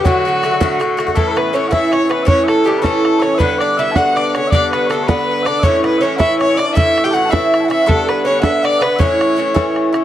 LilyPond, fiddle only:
\new Staff \with { instrumentName = "Fiddle" } { \time 6/8 \key d \major \tempo 4. = 107 fis'2 r4 | \key a \mixolydian a'8 b'8 cis''8 e''8 cis''16. cis''32 b'8 | cis''8 a'8 g'8 a'4 cis''8 | b'8 d''8 e''8 fis''8 d''16. d''32 cis''8 |
d''8 b'8 a'8 b'4 d''8 | cis''8 b'8 cis''8 e''8 cis''8 d''8 | e''8. g''16 fis''8 e''4 e''8 | a'8 b'8 cis''8 e''8 d''8 b'8 |
cis''2 r4 | }